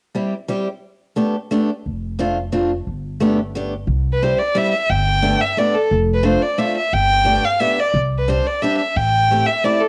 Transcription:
0.15 0.33 G3 soft
0.15 0.33 C4 soft
0.15 0.33 E4 soft
0.15 0.33 G4 soft
0.48 0.67 G3 medium
0.48 0.67 C4 soft
0.48 0.67 E4 soft
0.48 0.67 G4 soft
1.16 1.34 A3 soft
1.16 1.35 B3 soft
1.16 1.35 D4 soft
1.16 1.35 G4 soft
1.51 1.69 A3 medium
1.51 1.69 B3 soft
1.51 1.69 D4 soft
1.51 1.69 G4 medium
1.86 2.85 F1 medium
2.19 2.36 A3 soft
2.19 2.37 C4 medium
2.19 2.37 D4 soft
2.19 2.37 F4 medium
2.52 2.70 A3 soft
2.52 2.70 C4 soft
2.52 2.70 D4 soft
2.52 2.70 F4 medium
2.87 3.87 G1 medium
3.20 3.38 A3 medium
3.20 3.38 B3 soft
3.20 3.38 D4 soft
3.20 3.39 G4 medium
3.55 3.72 A3 soft
3.55 3.72 B3 soft
3.55 3.73 D4 soft
3.55 3.73 G4 medium
3.87 4.32 C2 medium
4.13 4.25 B4 medium
4.22 4.40 G3 medium
4.22 4.40 C4 soft
4.22 4.40 E4 soft
4.22 4.40 G4 medium
4.22 4.40 C5 medium
4.39 4.59 D5 medium
4.55 4.73 G3 medium
4.55 4.73 C4 soft
4.55 4.73 E4 soft
4.55 4.74 G4 medium
4.55 4.71 E5 medium
4.72 4.92 E5 medium
4.90 5.34 G1 medium
4.90 5.42 G5 medium
5.22 5.40 A3 medium
5.22 5.40 B3 soft
5.22 5.40 D4 soft
5.22 5.41 G4 soft
5.41 5.60 E5 medium
5.57 5.74 A3 medium
5.57 5.75 B3 soft
5.57 5.75 D4 soft
5.57 5.75 G4 medium
5.57 5.76 D5 medium
5.75 5.91 A4 medium
5.91 6.35 F1 medium
6.14 6.27 B4 medium
6.23 6.41 A3 medium
6.23 6.41 C4 soft
6.23 6.41 D4 soft
6.23 6.42 F4 soft
6.23 6.44 C5 medium
6.43 6.60 D5 medium
6.58 6.75 A3 soft
6.58 6.76 C4 soft
6.58 6.76 D4 medium
6.58 6.76 F4 medium
6.58 6.76 E5 medium
6.78 6.95 E5 medium
6.93 7.37 G1 medium
6.93 7.46 G5 loud
7.25 7.43 A3 soft
7.25 7.43 B3 soft
7.25 7.43 D4 soft
7.25 7.43 G4 soft
7.45 7.61 F5 medium
7.60 7.78 A3 medium
7.60 7.78 B3 soft
7.60 7.78 D4 soft
7.60 7.78 G4 medium
7.60 7.81 E5 medium
7.80 7.96 D5 medium
7.94 8.38 C2 medium
8.18 8.31 B4 medium
8.28 8.45 G3 soft
8.28 8.46 C4 soft
8.28 8.46 D4 soft
8.28 8.46 G4 medium
8.28 8.48 C5 medium
8.47 8.63 D5 medium
8.62 8.79 G3 soft
8.62 8.80 C4 soft
8.62 8.80 D4 soft
8.62 8.80 G4 medium
8.62 8.78 E5 medium
8.78 8.98 E5 medium
8.96 9.40 A1 medium
8.96 9.48 G5 medium
9.31 9.48 A3 soft
9.31 9.48 C4 soft
9.31 9.48 E4 soft
9.31 9.48 G4 medium
9.46 9.66 E5 medium
9.64 9.81 A3 soft
9.64 9.81 C4 soft
9.64 9.81 E4 medium
9.64 9.81 G4 soft
9.64 9.82 D5 medium
9.80 9.88 A4 medium

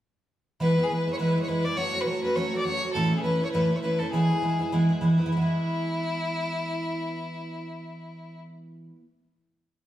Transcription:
0.60 0.77 E3 medium
0.60 0.78 G#3 medium
0.60 0.77 B3 medium
0.60 0.76 E4 medium
0.60 0.85 B4 loud
0.77 0.89 G#3 soft
0.77 0.90 B3 soft
0.77 0.90 E4 soft
0.84 0.91 G#4 medium
0.89 1.07 E3 soft
0.89 1.07 G#3 soft
0.89 1.07 B3 soft
0.89 1.06 E4 soft
0.89 1.12 B4 medium
1.07 1.18 G#3 soft
1.07 1.18 B3 soft
1.07 1.19 E4 soft
1.13 1.19 C#5 medium
1.19 1.36 E3 medium
1.19 1.36 G#3 medium
1.19 1.36 B3 medium
1.19 1.34 E4 medium
1.19 1.41 B4 medium
1.36 1.47 G#3 soft
1.36 1.48 B3 soft
1.36 1.48 E4 soft
1.42 1.49 C#5 medium
1.47 1.65 E3 soft
1.47 1.65 G#3 medium
1.47 1.65 B3 medium
1.47 1.64 E4 medium
1.47 1.66 B4 loud
1.65 1.77 G#3 soft
1.65 1.78 B3 soft
1.65 1.78 E4 soft
1.65 1.78 D5 medium
1.77 1.94 F#3 medium
1.77 1.94 A3 medium
1.77 1.93 C#4 medium
1.77 1.92 F#4 medium
1.77 2.02 C#5 loud
1.93 2.05 A3 soft
1.93 2.06 C#4 soft
1.93 2.07 F#4 soft
2.01 2.08 B4 medium
2.05 2.23 F#3 soft
2.05 2.24 A3 medium
2.05 2.23 C#4 medium
2.05 2.22 F#4 medium
2.05 2.23 C#5 loud
2.23 2.35 A3 soft
2.23 2.36 C#4 soft
2.23 2.36 F#4 soft
2.23 2.37 B4 medium
2.36 2.53 F#3 medium
2.36 2.53 A3 medium
2.36 2.53 C#4 medium
2.36 2.52 F#4 medium
2.36 2.57 C#5 medium
2.53 2.65 A3 soft
2.53 2.66 C#4 soft
2.53 2.66 F#4 soft
2.58 2.65 D5 medium
2.64 2.82 F#3 soft
2.64 2.83 A3 medium
2.64 2.83 C#4 medium
2.64 2.81 F#4 medium
2.64 2.92 C#5 loud
2.82 2.95 A3 soft
2.82 2.95 C#4 soft
2.82 2.95 F#4 soft
2.93 3.12 A2 medium
2.93 3.12 E3 medium
2.93 3.13 A3 medium
2.93 3.12 C#4 medium
2.93 3.11 E4 medium
2.93 3.16 A4 medium
3.12 3.23 A3 soft
3.12 3.24 C#4 soft
3.12 3.25 E4 soft
3.17 3.21 G#4 medium
3.22 3.41 E3 medium
3.22 3.41 A3 soft
3.22 3.41 C#4 medium
3.22 3.45 B4 medium
3.26 3.40 E4 medium
3.41 3.53 A3 soft
3.41 3.53 C#4 soft
3.41 3.54 E4 soft
3.45 3.51 C#5 medium
3.51 3.71 A2 medium
3.51 3.71 E3 medium
3.51 3.71 A3 medium
3.51 3.71 C#4 medium
3.51 3.77 B4 medium
3.55 3.69 E4 medium
3.71 3.83 A3 soft
3.71 3.83 C#4 soft
3.71 3.83 E4 soft
3.76 3.81 C#5 medium
3.82 4.00 E3 medium
3.82 4.00 A3 medium
3.82 4.00 C#4 medium
3.82 3.99 E4 medium
3.82 4.00 B4 medium
3.99 4.13 A3 soft
3.99 4.13 C#4 soft
3.99 4.13 E4 soft
3.99 4.11 A4 medium
4.12 4.30 E3 medium
4.12 4.30 G#3 medium
4.12 4.30 B3 medium
4.12 4.29 E4 medium
4.12 4.96 G#4 medium
4.30 4.41 G#3 soft
4.30 4.42 B3 soft
4.30 4.42 E4 soft
4.42 4.59 E3 medium
4.42 4.59 G#3 soft
4.42 4.59 B3 soft
4.42 4.58 E4 medium
4.59 4.72 G#3 soft
4.59 4.72 B3 soft
4.59 4.71 E4 soft
4.72 4.89 E3 medium
4.72 4.89 G#3 medium
4.72 4.88 B3 medium
4.72 4.87 E4 medium
4.89 5.01 G#3 soft
4.89 5.01 B3 soft
4.89 5.01 E4 medium
5.01 5.18 E3 medium
5.01 5.18 G#3 medium
5.01 5.18 B3 medium
5.01 5.17 E4 medium
5.18 5.31 G#3 soft
5.18 5.31 B3 soft
5.18 5.30 E4 soft
5.26 8.89 E3 medium
5.26 8.40 E4 medium
5.32 8.95 G#3 medium
5.37 9.00 B3 medium
5.41 9.05 E4 medium

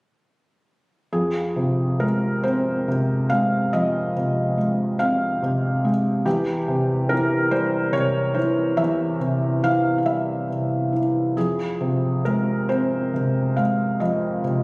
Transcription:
1.13 3.69 F2 soft
1.13 2.02 G#4 medium
1.56 2.86 C3 soft
2.00 3.30 G#3 soft
2.00 2.45 A#4 medium
2.43 4.11 C4 soft
2.43 3.26 C5 medium
2.88 4.15 C3 soft
3.30 4.56 G#3 soft
3.30 3.69 F5 medium
3.73 6.23 F2 soft
3.73 4.96 D#5 medium
4.16 5.41 C3 soft
4.58 5.83 G#3 soft
4.99 6.22 C4 soft
4.99 5.90 F5 medium
5.42 6.24 C3 soft
5.85 6.25 G#3 soft
6.25 8.73 E2 medium
6.25 7.11 G4 medium
6.68 7.91 C3 soft
7.09 8.34 E3 soft
7.09 7.52 A#4 medium
7.51 9.17 G3 soft
7.51 7.94 C5 medium
7.93 9.18 C3 soft
7.93 8.36 C#5 medium
8.35 9.61 E3 soft
8.35 8.78 C5 medium
8.77 11.33 E2 medium
8.77 9.66 E5 medium
9.20 10.47 C3 soft
9.62 10.91 E3 soft
9.62 9.97 F5 medium
9.98 10.05 F5 soft
10.06 11.32 G3 soft
10.06 10.99 E5 medium
10.48 11.33 C3 soft
10.93 11.35 E3 soft
11.37 13.96 F2 soft
11.37 12.21 G#4 medium
11.81 13.12 C3 soft
12.25 13.56 G#3 soft
12.25 12.66 A#4 medium
12.69 14.39 C4 soft
12.69 13.59 C5 medium
13.14 14.42 C3 soft
13.57 14.63 G#3 soft
13.57 14.01 F5 medium
14.00 14.63 F2 soft
14.00 14.63 D#5 medium
14.44 14.63 C3 soft

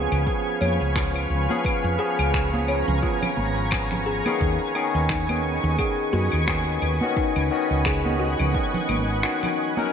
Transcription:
0.00 0.23 F3 medium
0.00 0.23 B3 medium
0.00 0.24 C#4 medium
0.00 0.24 G#4 medium
0.00 0.24 G#4 loud
0.00 4.36 B4 medium
0.00 4.36 F5 medium
0.00 1.62 G#5 medium
0.00 9.93 G#5 medium
0.00 9.88 C#6 medium
0.00 9.93 G#6 medium
0.12 0.24 C#2 medium
0.12 claves medium
0.12 shaker medium
0.26 0.92 F3 medium
0.26 0.92 B3 medium
0.26 0.93 C#4 medium
0.26 0.93 G#4 medium
0.26 kick medium
0.26 shaker medium
0.47 shaker soft
0.61 0.78 F2 medium
0.61 0.82 C#5 medium
0.61 high conga medium
0.61 claves medium
0.81 1.26 C#2 medium
0.81 shaker medium
0.95 1.45 F3 medium
0.95 1.45 B3 medium
0.95 1.46 C#4 medium
0.95 1.29 F4 medium
0.95 1.46 G#4 medium
0.95 finger snap medium
0.95 kick medium
0.95 shaker medium
1.16 claves medium
1.16 shaker soft
1.30 1.47 C#2 medium
1.49 1.95 F3 medium
1.49 1.96 B3 medium
1.49 1.96 C#4 medium
1.49 1.96 G#4 loud
1.49 high conga medium
1.49 shaker medium
1.64 1.98 B4 medium
1.64 4.38 A#5 medium
1.64 kick medium
1.64 claves medium
1.64 shaker medium
1.84 1.97 F2 medium
1.84 shaker soft
1.98 2.48 F3 medium
1.98 2.49 B3 medium
1.98 2.49 C#4 medium
1.98 2.31 G#4 medium
1.98 2.49 G#4 loud
2.19 2.82 C#2 medium
2.19 claves medium
2.19 shaker medium
2.34 finger snap medium
2.34 kick medium
2.34 shaker medium
2.53 2.99 F3 medium
2.53 2.99 B3 medium
2.53 2.99 C#4 medium
2.53 3.00 G#4 medium
2.53 high conga medium
2.53 shaker soft
2.68 2.89 C#5 medium
2.68 claves medium
2.88 3.00 C#2 medium
2.88 low conga medium
2.88 shaker medium
3.02 3.68 F3 medium
3.02 3.68 B3 medium
3.02 3.69 C#4 medium
3.02 3.36 F4 loud
3.02 3.69 G#4 medium
3.02 kick medium
3.02 shaker medium
3.23 low conga medium
3.23 claves medium
3.23 shaker soft
3.37 4.20 G#1 medium
3.37 high conga medium
3.57 shaker medium
3.71 4.21 F3 medium
3.71 4.21 B3 medium
3.71 4.21 C#4 medium
3.71 4.22 G#4 medium
3.71 4.05 B4 medium
3.71 finger snap medium
3.71 kick loud
3.71 claves medium
3.71 shaker medium
3.91 finger snap soft
3.91 low conga medium
3.91 shaker soft
4.06 4.38 G#4 loud
4.25 4.71 D#3 loud
4.25 4.72 B3 medium
4.25 4.72 C#4 medium
4.25 4.72 G#4 loud
4.25 high conga medium
4.25 claves medium
4.25 shaker medium
4.41 4.57 D#2 medium
4.41 9.89 B4 medium
4.41 9.89 D#5 medium
4.41 7.14 G#5 medium
4.41 kick medium
4.41 shaker medium
4.61 shaker soft
4.75 5.24 D#3 medium
4.75 5.25 B3 medium
4.75 5.25 C#4 medium
4.75 5.25 G#4 loud
4.75 4.96 B4 medium
4.75 claves medium
4.95 5.58 D#2 medium
4.95 shaker medium
5.09 5.43 D#4 medium
5.09 finger snap medium
5.09 kick medium
5.09 shaker medium
5.29 5.75 D#3 medium
5.29 5.75 B3 medium
5.29 5.76 C#4 medium
5.29 5.76 G#4 medium
5.29 high conga medium
5.29 claves medium
5.29 shaker soft
5.64 5.76 D#2 medium
5.64 shaker medium
5.79 6.44 D#3 medium
5.79 6.44 B3 medium
5.79 6.45 C#4 medium
5.79 6.12 G#4 medium
5.79 6.45 G#4 medium
5.79 kick medium
5.79 claves medium
5.79 shaker medium
5.98 shaker soft
6.13 6.29 F#2 medium
6.13 6.45 F#4 loud
6.13 high conga medium
6.32 6.78 D#2 medium
6.32 claves medium
6.32 shaker medium
6.48 6.97 D#3 medium
6.48 6.97 B3 medium
6.48 6.98 C#4 medium
6.48 6.98 G#4 medium
6.48 finger snap loud
6.48 kick medium
6.48 shaker medium
6.68 shaker soft
6.82 6.98 D#2 medium
6.82 7.03 B4 medium
6.82 claves medium
7.01 7.47 D#3 medium
7.01 7.48 B3 medium
7.01 7.48 C#4 medium
7.01 7.48 F#4 loud
7.01 high conga medium
7.01 shaker medium
7.16 7.50 D#4 medium
7.16 9.90 F#5 medium
7.16 kick medium
7.16 shaker medium
7.36 7.49 C#2 medium
7.36 claves medium
7.36 shaker medium
7.50 8.00 D#3 medium
7.50 8.01 B3 medium
7.50 8.01 C#4 medium
7.50 8.01 F#4 medium
7.71 8.34 C#2 medium
7.71 shaker medium
7.85 8.19 G#4 medium
7.85 finger snap loud
7.85 kick loud
7.85 claves medium
7.85 shaker medium
8.04 8.50 D#3 medium
8.04 8.51 B3 medium
8.04 8.51 C#4 medium
8.04 8.51 F#4 medium
8.04 high conga medium
8.04 shaker soft
8.20 8.51 F#4 loud
8.39 8.52 C#2 medium
8.39 low conga medium
8.39 claves medium
8.39 shaker medium
8.54 9.19 D#3 medium
8.54 9.20 B3 medium
8.54 9.20 C#4 medium
8.54 9.20 F#4 medium
8.54 kick medium
8.54 shaker medium
8.74 low conga medium
8.74 shaker soft
8.89 9.24 G#1 medium
8.89 9.10 B4 medium
8.89 high conga medium
8.89 claves medium
9.10 shaker medium
9.23 9.73 D#3 medium
9.23 9.73 B3 medium
9.23 9.73 C#4 medium
9.23 9.56 D#4 loud
9.23 9.74 F#4 medium
9.23 finger snap medium
9.23 shaker medium
9.43 finger snap soft
9.43 low conga medium
9.43 claves medium
9.43 shaker soft
9.77 9.93 F#3 medium
9.77 9.93 C#4 medium
9.77 9.93 D#4 medium
9.77 9.93 A#4 loud
9.77 high conga medium
9.77 shaker medium

